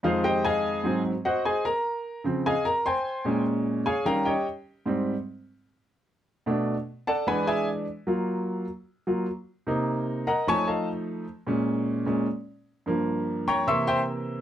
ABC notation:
X:1
M:4/4
L:1/8
Q:1/4=150
K:Dblyd
V:1 name="Grand piano"
[FAcf] [Gceg] [Aefa]3 z [_Gce_g] [Acea] | [Bb]3 z [Aefa] [Bb] [cgac']2- | [cgac'] z2 [Adfa] [Bfgb] [Gdeg] z2 | z8 |
z3 [=A=d^f=a] [=Bf^g=b] [^Gd=eg] z2 | z8 | z3 [Be_gb] [^c^g=a^c'] [=Aefa] z2 | z8 |
z3 [dgbd'] [=ec'd'=e'] [cegc'] z2 |]
V:2 name="Grand piano" clef=bass
[F,,E,A,]4 [A,,_G,C] z3 | z3 [D,F,C] z4 | [B,,A,D]3 z [E,G,D] z3 | [A,,G,C] z6 z |
[=B,,=A,=D] z3 [=E,^G,D]3 z | [_G,B,F]3 z2 [G,B,F] z2 | [C,B,E]3 z [F,=A,E]4 | z [B,,A,D]3 [B,,A,D] z3 |
[G,,F,B,]4 [C,=E,B,]4 |]